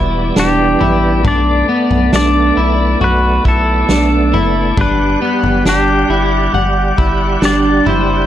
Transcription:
Already playing: sub bass E1, tonewheel organ E3 G3 B3 D5, clean electric guitar E4
0.36 sub bass E1, clean electric guitar D4, pedal steel guitar G4, snare
0.81 sub bass A1, clean electric guitar E4, floor tom
1.24 sub bass B1, tonewheel organ A3, clean electric guitar D4, pedal steel guitar D5, kick, floor tom
1.69 clean electric guitar B3
1.90 sub bass B1, floor tom
2.13 sub bass B1, clean electric guitar D4, pedal steel guitar D5, snare
2.57 sub bass B1, clean electric guitar E4
3.01 sub bass B1, clean electric guitar F#4, pedal steel guitar B4, floor tom
3.45 sub bass B1, clean electric guitar E4, pedal steel guitar A4, kick
3.89 sub bass B1, clean electric guitar D4, snare
4.33 sub bass F#1, clean electric guitar E4, floor tom
4.77 sub bass G1, tonewheel organ G3 G4 F#5, clean electric guitar D4, pedal steel guitar B4, kick, floor tom
5.22 clean electric guitar B3
5.43 sub bass G1, floor tom
5.65 sub bass G1, clean electric guitar D4, pedal steel guitar G4, snare
6.09 sub bass G1, clean electric guitar E4
6.53 sub bass G1, clean electric guitar F#5, floor tom
6.98 sub bass G1, clean electric guitar E4, kick
7.41 sub bass G1, clean electric guitar D4, pedal steel guitar D5, snare
7.86 sub bass F#1, clean electric guitar E4, pedal steel guitar C5, floor tom

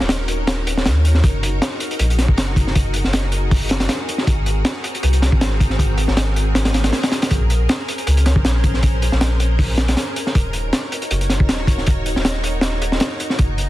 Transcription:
Already playing: string machine C#4 D#4 F#4 A#4
0.00 sub bass D#1, snare
0.09 snare, closed hi-hat
0.28 closed hi-hat
0.47 snare, closed hi-hat
0.67 closed hi-hat
0.77 snare
0.85 sub bass D#2, snare, closed hi-hat
1.05 closed hi-hat
1.15 snare
1.23 sub bass F#1, string machine G#4, kick, closed hi-hat
1.43 closed hi-hat
1.62 snare, closed hi-hat
1.80 closed hi-hat
1.91 closed hi-hat
1.99 sub bass A#1, closed hi-hat
2.10 closed hi-hat
2.19 snare, closed hi-hat
2.28 sub bass F#1, kick
2.38 snare, closed hi-hat
2.56 kick, closed hi-hat
2.67 snare
2.75 kick, closed hi-hat
2.94 closed hi-hat
3.04 sub bass F#1, snare
3.13 snare, closed hi-hat
3.32 closed hi-hat
3.51 kick, open hi-hat
3.69 snare, closed hi-hat
3.80 snare, closed hi-hat
3.89 snare, closed hi-hat
4.09 closed hi-hat
4.18 snare
4.27 sub bass G#1, string machine C4 A#4, kick, closed hi-hat
4.46 closed hi-hat
4.65 snare, closed hi-hat
4.84 closed hi-hat
4.95 closed hi-hat
5.03 sub bass C2, closed hi-hat
5.13 closed hi-hat
5.22 snare, closed hi-hat
5.32 sub bass G#1, kick
5.41 snare, closed hi-hat
5.60 kick, closed hi-hat
5.70 snare
5.79 kick, closed hi-hat
5.98 closed hi-hat
6.08 sub bass G#1, snare
6.17 snare, closed hi-hat
6.36 closed hi-hat
6.55 snare, closed hi-hat, swell
6.65 snare, closed hi-hat
6.74 snare, closed hi-hat
6.84 snare, closed hi-hat
6.93 snare, closed hi-hat
7.03 snare, closed hi-hat
7.12 snare, closed hi-hat
7.22 snare, closed hi-hat
7.31 sub bass A#1, string machine C#4 C5, kick, closed hi-hat
7.50 closed hi-hat
7.69 snare, closed hi-hat
7.88 closed hi-hat
7.98 closed hi-hat
8.07 sub bass C#2, closed hi-hat
8.17 closed hi-hat
8.26 snare, closed hi-hat
8.36 sub bass A#1, kick
8.45 snare, closed hi-hat
8.64 kick, closed hi-hat
8.74 snare
8.83 kick, closed hi-hat
9.02 closed hi-hat
9.12 sub bass A#1, snare
9.21 snare, closed hi-hat
9.40 closed hi-hat
9.59 kick, open hi-hat
9.78 snare, closed hi-hat
9.88 snare, closed hi-hat
9.97 snare, closed hi-hat
10.16 closed hi-hat
10.27 snare
10.35 sub bass D#1, string machine D#4 F#4 C#5, kick, closed hi-hat
10.53 closed hi-hat
10.73 snare, closed hi-hat
10.92 closed hi-hat
11.02 closed hi-hat
11.11 sub bass F#1, closed hi-hat
11.21 closed hi-hat
11.30 snare, closed hi-hat
11.40 sub bass D#1, kick
11.49 snare, closed hi-hat
11.67 kick, closed hi-hat
11.78 snare
11.86 kick, closed hi-hat
12.06 closed hi-hat
12.16 sub bass D#1, snare
12.25 snare, closed hi-hat
12.44 closed hi-hat
12.61 snare, closed hi-hat
12.82 closed hi-hat
12.92 snare
13.00 snare, closed hi-hat
13.20 closed hi-hat
13.30 snare
13.39 sub bass F#1, string machine F#4 G#4 A#4, kick, closed hi-hat
13.58 closed hi-hat

